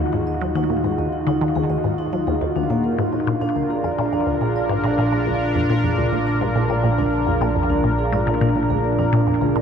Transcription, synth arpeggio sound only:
0.13 G#2
0.41 F#3
0.55 D#2
0.70 A#2
0.84 G#2
0.98 D#2
1.27 D3
1.41 D#3
1.56 D#2
1.70 D#2
1.84 G#2
2.13 F#3
2.27 D#2
2.41 D#2
2.56 D#2
2.70 A#2
2.98 G#2
3.13 A#2
3.27 A#2
3.41 A#2
3.56 D2
3.84 F2
3.98 A#2
4.13 F2
4.27 D2
4.41 A#2
4.69 G#2
4.84 A#2
4.98 A#2
5.12 A#2
5.27 D2
5.55 F2
5.70 A#2
5.84 F2
5.98 D2
6.12 A#2
6.41 G#2
6.55 A#2
6.70 A#2
6.84 A#2
6.98 D2
7.27 F2
7.41 A#2
7.55 F2
7.70 D2
7.84 A#2
8.12 G#2
8.27 A#2
8.41 A#2
8.56 A#2
8.70 D2
8.99 F2
9.13 A#2
9.27 F2
9.41 D2
9.55 A#2

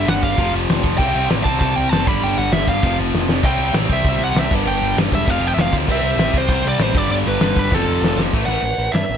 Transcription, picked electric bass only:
0.07 G1
0.23 G1
0.38 F1
0.54 F1
0.69 F1
0.84 F1
0.99 C2
1.15 C2
1.30 A1
1.46 C2
1.61 C2
1.77 C2
1.92 F#1
2.07 G1
2.22 G1
2.38 G1
2.52 G1
2.67 G1
2.83 F1
2.99 F1
3.14 F1
3.28 F1
3.43 C2
3.59 C2
3.73 A1
3.90 C2
4.04 C2
4.19 C2
4.35 C2
4.51 G1
4.65 G1
4.82 G1
4.97 G1
5.11 E1
5.27 F1
5.40 F1
5.56 F1
5.72 D2
5.88 C2
6.02 C2
6.16 A1
6.33 C2
6.49 C2
6.64 C2
6.79 A1
6.94 G1
7.09 G1
7.26 G1
7.41 G1
7.56 G1
7.72 F1
7.87 F1
8.01 F1
8.16 F1
8.34 A1
8.47 A1
8.62 A1
8.78 A1
8.94 G2
9.09 A1

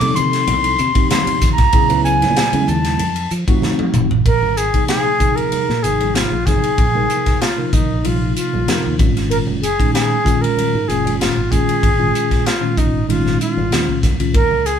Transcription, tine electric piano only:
0.00 C3 F3 A#3 D#4 A4
0.94 C3 F3 A#3 D#4 G4
1.72 C#3 F#3 B3 E4 G#4
1.89 C#3 F#3 B3 E4 B4
2.52 C#3 F#3 G#3 B3 E4
3.47 F3 A3 C4 D#4 F#4
4.73 C3 F3 A#3 D#4 G#4
5.18 C3 F3 A#3 D#4 G#4
5.83 C3 F3 A#3 D#4 G#4
6.47 C3 F3 A#3 D#4 G#4
6.94 C3 F3 A#3 D#4 A#4
7.57 C3 F3 A#3 D#4 A#4
8.04 C3 F3 A#3 D#4 F4
8.67 C3 F3 A#3 D#4 A#4
8.98 A#2 D#3 G#3 C#4 F4
9.79 A#2 D#3 G#3 C#4 D#4
10.24 A#2 D#3 G#3 C#4 F4
10.86 A#2 D#3 G#3 C#4 F4
11.50 A#2 D#3 G#3 C#4 F4
11.98 A#2 D#3 G#3 C#4 F4
12.60 A#2 D#3 G#3 C#4 F4
13.07 A#2 D#3 G#3 C#4 D#4
13.70 A#2 D#3 G#3 C#4 F4
14.19 A#2 D#3 G#3 C#4 F4

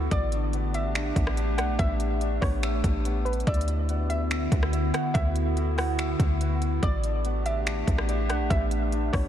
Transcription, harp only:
Already playing: B3 E4 E5
0.11 D5
0.33 D4
0.54 B3
0.74 D5
0.95 D4
1.16 B3
1.37 D5
1.58 D4
1.79 B3
2.22 D4
2.43 B3
2.63 E5
2.85 D4
3.05 B3
3.47 E5
3.69 E4
3.89 B3
4.10 E5
4.31 E4
4.52 B3
4.73 E5
4.93 E4
5.14 B3
5.57 E4
5.78 B3
5.99 E5
6.20 E4
6.41 B3
6.83 D5
7.04 D4
7.25 B3
7.46 D5
7.67 D4
7.87 B3
8.09 D5
8.30 D4
8.50 B3
8.93 D4
9.14 B3

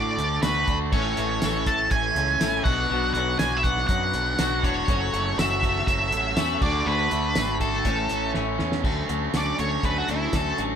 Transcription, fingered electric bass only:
Already playing: A2
0.17 D2
0.43 D2
0.68 D2
0.92 A1
1.18 A1
1.43 A1
1.91 A1
2.15 C#2
2.41 A1
2.65 B1
2.90 B1
3.15 B1
3.40 B1
3.89 F#2
4.14 B1
4.39 B1
4.63 E1
4.88 F#1
5.13 F#1
5.37 F#1
5.87 F#1
6.11 A1
6.36 E2
6.62 D2
6.86 D2
7.12 D2
7.36 G#1
7.85 A1
8.11 A1
8.36 A1
8.60 E2
8.84 D2
9.09 D2
9.34 D2
9.59 D2
9.83 D2
10.08 D2
10.33 D2
10.59 A1

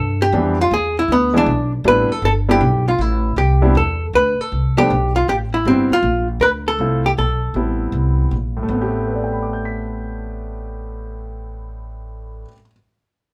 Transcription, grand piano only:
0.33 E3 G3 B3 C4 D4
1.33 E3 G#3 B3 D4 E4
1.85 G3 B3 C4 D4 E4
2.49 G3 B3 C4 D4 E4
3.62 G3 B3 C4 D4 E4
4.77 F3 A3 B3 D4
5.66 G3 B3 C4 E4
6.80 A3 C4 E4 F4
7.56 G3 B3 C4 E4
8.57 A2
8.63 A3
8.69 B3
8.75 C4
8.82 G4
9.08 B4
9.15 D5
9.24 G5
9.32 B5
9.43 D6
9.53 G6
9.65 B6

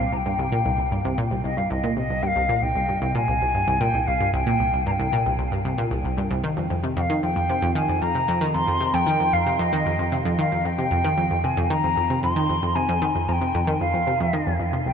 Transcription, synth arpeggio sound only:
0.00 C2
0.12 C2
0.26 G2
0.39 C2
0.52 A#2
0.65 C2
0.78 C2
0.92 G2
1.05 C2
1.18 A#2
1.31 C2
1.44 C2
1.57 G2
1.71 C2
1.84 A#2
1.97 C2
2.10 C2
2.23 G2
2.36 C2
2.49 A#2
2.62 C2
2.76 C2
2.89 G2
3.02 C2
3.15 A#2
3.28 C2
3.41 C2
3.54 G2
3.68 C2
3.81 A#2
3.94 C2
4.07 C2
4.21 G2
4.33 C2
4.47 A#2
4.60 C2
4.73 C2
4.86 G2
4.99 C2
5.13 A#2
5.26 C2
5.39 C2
5.52 G2
5.65 C2
5.78 A#2
5.91 C2
6.05 C2
6.17 G2
6.30 C2
6.44 D#3
6.57 F2
6.70 F2
6.84 C3
6.97 F2
7.10 D#3
7.23 F2
7.36 F2
7.49 C3
7.62 F2
7.75 D#3
7.89 F2
8.02 F2
8.15 C3
8.28 F2
8.41 D#3
8.54 F2
8.67 F2
8.80 C3
8.94 F2
9.07 D#3
9.20 F2
9.33 F2
9.46 C3
9.59 F2
9.73 D#3
9.86 F2
9.99 F2
10.12 C3
10.25 F2
10.39 D#3
10.52 F2
10.65 F2
10.78 C3
10.91 F2
11.04 D#3
11.18 F2
11.31 F2
11.44 C3
11.57 F2
11.70 D#3
11.84 F2
11.97 F2
12.10 C3
12.23 F2
12.36 D#3
12.49 F2
12.63 F2
12.76 C3
12.89 F2
13.02 D#3
13.15 F2
13.28 F2
13.41 C3
13.55 F2
13.67 D#3
13.81 F2
13.94 F2
14.07 C3
14.20 F2
14.33 D#3
14.47 F2
14.60 F2
14.73 C3
14.86 C2

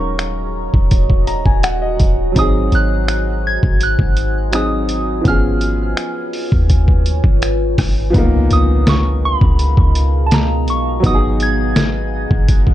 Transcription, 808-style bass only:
Already playing: D#1
0.74 D#1
1.46 D#1
2.00 D#1
2.36 G#1
2.72 G#1
3.63 G#1
3.99 G#1
5.25 G#1
6.52 D#2
7.24 G#1
7.78 G#1
8.14 C#2
8.51 C#2
9.41 C#2
9.77 C#2
10.68 B1
11.04 G#1
12.31 G#1

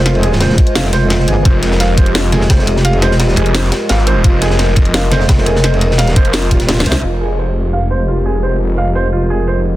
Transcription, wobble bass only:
Already playing: F1
0.76 F1
1.28 G1
2.32 F1
2.50 F1
3.11 E1
5.12 F1
5.29 F1
5.90 E1
6.51 D#1
6.86 C2

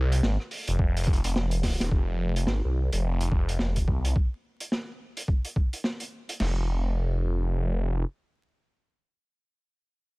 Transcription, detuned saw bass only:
Already playing: C2
0.23 G#1
0.68 F1
0.79 F1
1.24 F1
1.80 D#1
1.92 F1
2.47 G#1
2.64 C2
2.92 F1
3.32 F1
3.88 C2
6.40 F1

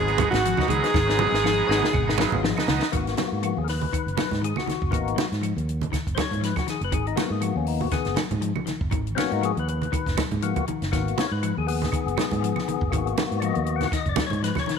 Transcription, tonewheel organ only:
Already playing: F#3 B3 D#4
0.57 F#3 B3 D#4
0.83 F#3 B3 D#4
1.06 F#3 B3 C#4
1.67 F#3 B3 D#4 G#5
1.93 F#5
2.18 F5
2.31 F#3 B3 F4
2.43 D#5
2.69 D#5
2.92 A#3 B3 F#4
3.45 F#4
3.58 G#4
3.64 A#4
3.69 B4
4.44 G#4
4.58 F#4
4.91 A#3 B3 D#4 F#4
6.15 C5
6.20 C#5
6.45 B4
6.58 F#4
6.70 G#4
6.84 B4
6.94 G#4
7.07 D#4
7.16 A#3 B3 F#4
7.32 G#4
7.43 F#4
7.57 C#4
7.68 D#4
7.81 F#4
7.92 B3 G#4
9.15 A#3 B3 C4 F#4
9.20 C#4
9.33 D#4
9.45 G#4
9.59 B4
9.69 B4
10.43 A#3 B3 F#4
10.92 A#3 B3 F#4
11.20 C#5
11.27 A#4
11.32 B4
11.58 G#4
11.67 B3 G#4
12.90 A#3 B3 F#4
13.40 D5
13.45 D#5
13.65 A#3 B3 F#4
13.76 F#5
13.94 D#5
14.09 D5
14.26 C#5
14.44 B4
14.59 C#5

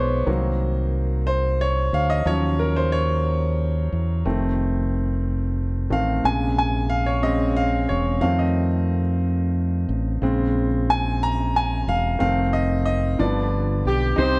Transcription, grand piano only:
Already playing: B2 F3 G#3 B4 C5 C#5 D5
0.27 D#3 F#3 A#3
1.27 C5
1.61 C#5
1.94 F5
2.10 D#5
2.25 F3 F#3 C#4 C#5
2.59 A#4
2.76 C5
2.92 C#5
4.26 D#3 A3 C4
5.90 D#3 A3 C4 F5
6.24 C3 C#3 G#3 G#5
6.58 G#5
6.90 F5
7.06 C#5
7.22 C#3 G#3 C4 D#5
7.57 F5
7.89 C#5
8.21 D#3 A3 C4 F5
8.39 D#5
10.22 C#3 G#3 C4
10.90 G#5
11.23 A#5
11.56 G#5
11.89 F5
12.19 D#3 A3 C4 F5
12.53 D#5
12.85 D#5
13.19 D3 F3 B3 D5
14.16 C3 D#4 G4 C5

